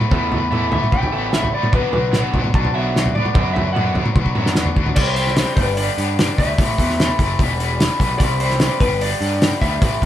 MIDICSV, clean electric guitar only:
0, 0, Header, 1, 2, 480
1, 0, Start_track
1, 0, Tempo, 403769
1, 141, Time_signature, 4, 2, 24, 8
1, 11953, End_track
2, 0, Start_track
2, 0, Title_t, "Clean electric guitar"
2, 0, Program_c, 0, 27
2, 867, Note_on_c, 0, 76, 83
2, 1097, Note_off_c, 0, 76, 0
2, 1109, Note_on_c, 0, 79, 92
2, 1571, Note_off_c, 0, 79, 0
2, 1587, Note_on_c, 0, 76, 82
2, 1817, Note_off_c, 0, 76, 0
2, 1832, Note_on_c, 0, 74, 86
2, 2060, Note_off_c, 0, 74, 0
2, 2078, Note_on_c, 0, 71, 93
2, 2281, Note_off_c, 0, 71, 0
2, 2295, Note_on_c, 0, 71, 83
2, 2531, Note_off_c, 0, 71, 0
2, 3033, Note_on_c, 0, 81, 85
2, 3261, Note_off_c, 0, 81, 0
2, 3271, Note_on_c, 0, 76, 77
2, 3733, Note_off_c, 0, 76, 0
2, 3745, Note_on_c, 0, 74, 90
2, 4202, Note_on_c, 0, 76, 88
2, 4210, Note_off_c, 0, 74, 0
2, 4424, Note_off_c, 0, 76, 0
2, 4429, Note_on_c, 0, 78, 98
2, 4679, Note_off_c, 0, 78, 0
2, 5893, Note_on_c, 0, 74, 107
2, 6122, Note_on_c, 0, 72, 88
2, 6146, Note_off_c, 0, 74, 0
2, 6602, Note_off_c, 0, 72, 0
2, 6606, Note_on_c, 0, 71, 80
2, 6862, Note_off_c, 0, 71, 0
2, 6863, Note_on_c, 0, 74, 91
2, 7584, Note_off_c, 0, 74, 0
2, 7589, Note_on_c, 0, 76, 98
2, 8978, Note_off_c, 0, 76, 0
2, 9730, Note_on_c, 0, 74, 99
2, 9983, Note_off_c, 0, 74, 0
2, 9988, Note_on_c, 0, 72, 85
2, 10463, Note_off_c, 0, 72, 0
2, 10468, Note_on_c, 0, 71, 85
2, 10712, Note_off_c, 0, 71, 0
2, 10716, Note_on_c, 0, 74, 92
2, 11427, Note_off_c, 0, 74, 0
2, 11432, Note_on_c, 0, 76, 100
2, 11953, Note_off_c, 0, 76, 0
2, 11953, End_track
0, 0, End_of_file